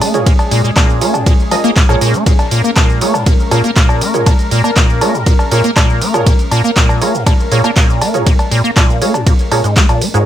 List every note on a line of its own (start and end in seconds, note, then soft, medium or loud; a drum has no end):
0.00 10.23 G#3 medium
0.00 0.16 A#3 loud
0.00 10.22 C#4 medium
0.00 2.25 G#4 medium
0.00 open hi-hat loud
0.00 cowbell medium
0.14 0.24 G#2 medium
0.14 0.28 F4 medium
0.14 0.28 G#4 medium
0.14 0.28 A#4 medium
0.14 0.28 C#5 medium
0.14 closed hi-hat medium
0.14 shaker medium
0.26 0.33 A#2 medium
0.26 kick loud
0.26 closed hi-hat medium
0.26 ride medium
0.26 shaker medium
0.39 closed hi-hat soft
0.39 cowbell medium
0.39 shaker soft
0.51 0.62 A#2 loud
0.51 open hi-hat loud
0.64 0.71 A#2 medium
0.64 shaker medium
0.76 1.03 A#2 medium
0.76 kick loud
0.76 clap loud
0.76 closed hi-hat medium
0.76 ride medium
0.76 cowbell medium
0.76 shaker medium
0.90 shaker soft
1.01 1.16 A#3 loud
1.01 1.16 F4 medium
1.01 1.16 G#4 medium
1.01 1.16 A#4 medium
1.01 1.16 C#5 medium
1.01 open hi-hat loud
1.14 1.24 G#2 medium
1.14 closed hi-hat soft
1.14 cowbell medium
1.14 shaker medium
1.26 1.33 A#2 medium
1.26 kick loud
1.26 closed hi-hat medium
1.26 ride medium
1.26 shaker medium
1.40 shaker soft
1.51 1.56 F3 medium
1.51 1.74 F4 medium
1.51 1.74 G#4 medium
1.51 1.74 A#4 medium
1.51 1.74 D#5 medium
1.51 open hi-hat loud
1.51 cowbell medium
1.64 1.71 A#3 loud
1.64 closed hi-hat soft
1.64 shaker medium
1.76 1.83 A#2 medium
1.76 kick loud
1.76 clap loud
1.76 closed hi-hat medium
1.76 ride medium
1.76 shaker medium
1.89 1.96 A#2 loud
1.89 2.12 F4 loud
1.89 2.12 G#4 medium
1.89 2.12 A#4 medium
1.89 2.12 C#5 loud
1.89 cowbell medium
1.89 shaker soft
2.01 2.16 A#2 loud
2.01 open hi-hat loud
2.14 2.24 A#3 medium
2.14 closed hi-hat medium
2.14 shaker medium
2.26 2.33 A#2 medium
2.26 10.25 A#4 medium
2.26 kick loud
2.26 closed hi-hat medium
2.26 ride medium
2.26 shaker medium
2.39 closed hi-hat soft
2.39 cowbell medium
2.39 shaker soft
2.51 2.62 A#2 loud
2.51 open hi-hat loud
2.64 2.71 A#3 medium
2.64 shaker medium
2.76 3.03 A#2 medium
2.76 kick loud
2.76 clap loud
2.76 closed hi-hat medium
2.76 ride medium
2.76 cowbell medium
2.76 shaker medium
2.90 shaker soft
3.01 3.16 A#3 loud
3.01 3.16 F4 medium
3.01 3.16 G#4 medium
3.01 3.16 A#4 medium
3.01 3.16 C#5 medium
3.01 open hi-hat loud
3.14 3.24 G#2 medium
3.14 cowbell medium
3.14 shaker medium
3.26 3.33 A#2 medium
3.26 kick loud
3.26 closed hi-hat medium
3.26 ride medium
3.26 shaker medium
3.40 shaker soft
3.51 3.62 A#2 loud
3.51 3.66 F4 medium
3.51 3.66 G#4 medium
3.51 3.66 A#4 medium
3.51 3.66 C#5 medium
3.51 open hi-hat loud
3.51 cowbell medium
3.64 3.71 A#3 medium
3.64 closed hi-hat soft
3.64 shaker medium
3.76 4.03 A#2 medium
3.76 kick loud
3.76 clap loud
3.76 closed hi-hat medium
3.76 ride medium
3.76 shaker medium
3.89 cowbell medium
3.89 shaker soft
4.01 4.16 A#3 loud
4.01 open hi-hat loud
4.14 4.24 G#2 medium
4.14 4.28 F4 medium
4.14 4.28 G#4 medium
4.14 4.28 A#4 medium
4.14 4.28 C#5 medium
4.14 closed hi-hat medium
4.14 shaker medium
4.26 4.33 A#2 medium
4.26 kick loud
4.26 closed hi-hat medium
4.26 ride medium
4.26 cowbell medium
4.26 shaker medium
4.39 closed hi-hat soft
4.39 shaker soft
4.51 4.62 A#2 loud
4.51 open hi-hat loud
4.64 4.71 A#3 medium
4.64 cowbell medium
4.64 shaker medium
4.76 5.03 A#2 medium
4.76 kick loud
4.76 clap loud
4.76 closed hi-hat medium
4.76 ride medium
4.76 shaker medium
4.90 shaker soft
5.01 5.16 A#3 loud
5.01 5.16 F4 medium
5.01 5.16 G#4 medium
5.01 5.16 A#4 medium
5.01 5.16 C#5 medium
5.01 open hi-hat loud
5.01 cowbell medium
5.14 5.24 G#2 medium
5.14 shaker medium
5.26 5.33 A#2 medium
5.26 kick loud
5.26 closed hi-hat medium
5.26 ride medium
5.26 shaker medium
5.39 cowbell medium
5.39 shaker soft
5.51 5.62 A#2 loud
5.51 5.66 F4 medium
5.51 5.66 G#4 medium
5.51 5.66 A#4 medium
5.51 5.66 C#5 medium
5.51 open hi-hat loud
5.64 5.71 A#3 medium
5.64 closed hi-hat medium
5.64 shaker medium
5.76 6.03 A#2 medium
5.76 kick loud
5.76 clap loud
5.76 closed hi-hat medium
5.76 ride medium
5.76 cowbell medium
5.76 shaker medium
5.90 shaker soft
6.02 6.16 A#3 loud
6.02 open hi-hat loud
6.14 6.24 G#2 medium
6.14 6.28 F4 medium
6.14 6.28 G#4 medium
6.14 6.28 A#4 medium
6.14 6.28 C#5 medium
6.14 closed hi-hat medium
6.14 cowbell medium
6.14 shaker medium
6.26 6.33 A#2 medium
6.26 kick loud
6.26 closed hi-hat medium
6.26 ride medium
6.26 shaker medium
6.39 closed hi-hat soft
6.39 shaker soft
6.51 6.62 A#2 loud
6.51 open hi-hat loud
6.51 cowbell medium
6.64 6.71 A#3 medium
6.64 shaker medium
6.76 7.03 A#2 medium
6.76 kick loud
6.76 clap loud
6.76 closed hi-hat medium
6.76 ride medium
6.76 shaker medium
6.89 cowbell medium
6.89 shaker soft
7.01 7.16 A#3 loud
7.01 7.16 F4 medium
7.01 7.16 G#4 medium
7.01 7.16 A#4 medium
7.01 7.16 C#5 medium
7.01 open hi-hat loud
7.14 7.24 G#2 medium
7.14 shaker medium
7.26 7.33 A#2 medium
7.26 kick loud
7.26 closed hi-hat medium
7.26 ride medium
7.26 cowbell medium
7.26 shaker medium
7.40 shaker soft
7.51 7.62 A#2 loud
7.51 7.66 F4 medium
7.51 7.66 G#4 medium
7.51 7.66 A#4 medium
7.51 7.66 C#5 medium
7.51 open hi-hat loud
7.64 7.71 A#3 medium
7.64 closed hi-hat medium
7.64 cowbell medium
7.64 shaker medium
7.76 8.03 A#2 medium
7.76 kick loud
7.76 clap loud
7.76 closed hi-hat medium
7.76 ride medium
7.76 shaker medium
7.90 shaker soft
8.01 8.16 A#3 loud
8.01 open hi-hat loud
8.01 cowbell medium
8.14 8.24 G#2 medium
8.14 8.28 F4 medium
8.14 8.28 G#4 medium
8.14 8.28 A#4 medium
8.14 8.28 C#5 medium
8.14 closed hi-hat medium
8.14 shaker medium
8.26 8.33 A#2 medium
8.26 kick loud
8.26 closed hi-hat medium
8.26 ride medium
8.26 shaker medium
8.39 closed hi-hat soft
8.39 cowbell medium
8.39 shaker soft
8.51 8.62 A#2 loud
8.51 open hi-hat loud
8.64 8.71 A#3 medium
8.64 shaker medium
8.76 9.03 A#2 medium
8.76 kick loud
8.76 clap loud
8.76 closed hi-hat medium
8.76 ride medium
8.76 cowbell medium
8.76 shaker medium
8.90 shaker soft
9.01 9.16 A#3 loud
9.01 9.16 F4 medium
9.01 9.16 G#4 medium
9.01 9.16 A#4 medium
9.01 9.16 C#5 medium
9.01 open hi-hat loud
9.14 9.24 G#2 medium
9.14 closed hi-hat soft
9.14 cowbell medium
9.14 shaker medium
9.27 9.33 A#2 medium
9.27 kick loud
9.27 closed hi-hat medium
9.27 ride medium
9.27 shaker medium
9.39 closed hi-hat soft
9.39 shaker soft
9.52 9.62 A#2 medium
9.52 9.66 F4 medium
9.52 9.66 G#4 medium
9.52 9.66 A#4 medium
9.52 9.66 C#5 medium
9.52 open hi-hat loud
9.52 cowbell medium
9.64 9.78 G#2 medium
9.64 closed hi-hat medium
9.64 shaker medium
9.77 9.87 A#3 medium
9.77 kick loud
9.77 clap loud
9.77 closed hi-hat medium
9.77 ride medium
9.77 shaker medium
9.89 10.03 A#2 medium
9.89 closed hi-hat soft
9.89 cowbell medium
9.89 shaker soft
10.02 10.08 A#3 loud
10.02 open hi-hat loud
10.14 10.24 G#2 loud
10.14 10.25 F4 medium
10.14 10.25 G#4 medium
10.14 10.25 A#4 medium
10.14 10.25 C#5 medium
10.14 closed hi-hat medium
10.14 shaker medium